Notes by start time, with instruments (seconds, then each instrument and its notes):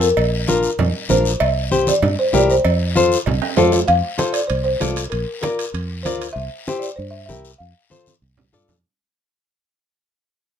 Already playing: fingered electric bass F2
0.01 marimba A#4, short guiro
0.17 fingered electric bass A#1, cowbell, long guiro
0.48 nylon-string guitar D4 F4 A#4, marimba A#4, high conga, short guiro
0.63 short guiro
0.79 fingered electric bass F2, cowbell, low conga, long guiro
1.09 fingered electric bass A#1, nylon-string guitar D4 F4 A#4, marimba C5, high conga, low timbale, short guiro
1.25 short guiro
1.40 fingered electric bass C2, marimba E5, cowbell, long guiro
1.71 nylon-string guitar E4 G4 C5, high conga, short guiro
1.87 marimba D5, high conga, short guiro
2.02 fingered electric bass G2, cowbell, low conga, long guiro
2.19 marimba C5
2.33 fingered electric bass C2, nylon-string guitar E4 G4 A#4, marimba D5, high conga, low timbale, short guiro
2.50 marimba C5, short guiro
2.65 fingered electric bass F2, cowbell, long guiro
2.96 nylon-string guitar F4 A4 C5, high conga, short guiro
3.12 short guiro
3.26 fingered electric bass C2, cowbell, low conga, long guiro
3.42 high timbale
3.57 fingered electric bass F2, nylon-string guitar F4 A4 D5, marimba C5, high conga, low timbale, short guiro
3.72 low timbale, short guiro
3.88 fingered electric bass F2, marimba F5, high conga, high timbale, long guiro
4.18 nylon-string guitar F4 A4 C5, high conga, high timbale, short guiro
4.33 marimba D5, high timbale, short guiro
4.47 fingered electric bass C2, marimba C5, high conga, high timbale, long guiro
4.64 marimba C5
4.80 fingered electric bass C2, nylon-string guitar F4 A4 D5, high conga, high timbale, low timbale, short guiro
4.96 high timbale, short guiro
5.10 fingered electric bass A#1, marimba A#4, high conga, high timbale, long guiro
5.41 nylon-string guitar F4 A#4 D5, marimba A#4, high conga, high timbale, short guiro
5.59 high timbale, short guiro
5.74 fingered electric bass F2, high conga, high timbale, long guiro
6.03 fingered electric bass D2, nylon-string guitar F4 A#4 D5, marimba C5, high conga, high timbale, short guiro
6.22 high timbale, short guiro
6.33 fingered electric bass C2, marimba E5, long guiro
6.37 high conga
6.67 nylon-string guitar E4 G4 C5, high conga, short guiro
6.80 marimba D5, short guiro
6.96 fingered electric bass G2, marimba C5, high conga, long guiro
7.11 marimba E5
7.26 fingered electric bass C2, nylon-string guitar E4 G4 A#4, marimba E5, short guiro
7.30 high conga
7.45 short guiro
7.58 fingered electric bass F2, marimba F5, high conga, long guiro
7.90 nylon-string guitar F4 A4 C5, high conga, short guiro
8.06 high conga, short guiro
8.22 fingered electric bass C2, long guiro
8.37 low conga
8.53 fingered electric bass G2, nylon-string guitar F4 A4 D5, low conga, short guiro
8.68 fingered electric bass F2, low conga, short guiro